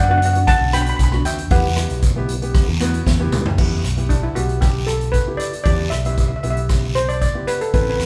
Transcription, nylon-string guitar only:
0.08 B3 D4 F#4
0.34 B3 D4 F#4
0.72 B3 D4 F#4
1.12 B3 D4 F#4
1.50 B3 E4 G4
1.76 B3 E4 G4
2.16 B3 E4 G4
2.42 B3 E4 G4
2.80 B3 E4 F#4 B4
3.07 E5
3.19 B3 E4 G4
3.57 B3 E4 G4
3.97 B3 E4 G4
4.35 B3 E4 G4
5.27 B3 E4 G4
5.65 B3 E4 G4
6.05 B3 E4 G4
6.43 B3 E4 G4
7.34 B3 E4 G4
7.73 C4 E4 A4

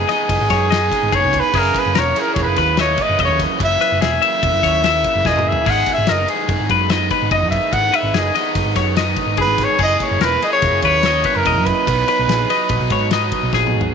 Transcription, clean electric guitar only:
0.09 D#5
0.50 C#5
0.70 D#5
1.12 G#4
1.55 G#4
1.95 A#4
2.17 G#4
2.58 B4
2.79 D#5
3.00 B4
3.20 D#5
3.81 B4
4.01 G#4
4.22 E5
4.63 C#5
4.84 E5
5.26 G#4
5.67 G#4
6.09 A#4
6.30 G#4
6.71 B4
6.90 D#5
7.11 B4
7.32 D#5
7.94 B4
8.14 G#4
8.35 D#5
8.76 C#5
8.97 D#5
9.38 G#4
9.80 G#4
10.21 A#4
10.43 G#4
10.85 B4
11.05 D#5
11.25 B4
11.47 D#5
12.09 B4
12.30 G#4
12.50 D#5
12.92 C#5
13.13 D#5
13.54 G#4

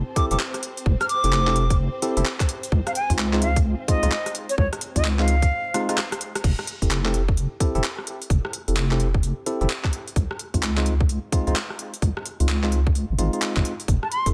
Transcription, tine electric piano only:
0.16 C4 E4 G4 A4
0.31 C4 E4 G4 A4
1.24 C4 E4 G4 A4
1.47 C4 E4 G4 A4
2.02 C4 E4 G4 A4
2.17 C4 E4 G4 A4
3.10 G#3 C4 D#4 F4
3.33 G#3 C4 D#4 F4
3.88 G#3 C4 D#4 F4
4.03 G#3 C4 D#4 F4
4.96 G#3 C4 D#4 F4
5.19 G#3 C4 D#4 F4
5.74 G#3 C4 D#4 F4
5.89 G#3 C4 D#4 F4
6.82 C4 E4 G4 A4
7.05 C4 E4 G4 A4
7.60 C4 E4 G4 A4
7.75 C4 E4 G4 A4
8.68 C4 E4 G4 A4
8.91 C4 E4 G4 A4
9.46 C4 E4 G4 A4
9.61 C4 E4 G4 A4
10.54 G#3 C4 D#4 F4
10.77 G#3 C4 D#4 F4
11.32 G#3 C4 D#4 F4
11.47 G#3 C4 D#4 F4
12.40 G#3 C4 D#4 F4
12.63 G#3 C4 D#4 F4
13.18 G#3 C4 D#4 F4
13.33 G#3 C4 D#4 F4
13.56 G#3 C4 D#4 F4
14.26 C4 E4 G4 A4

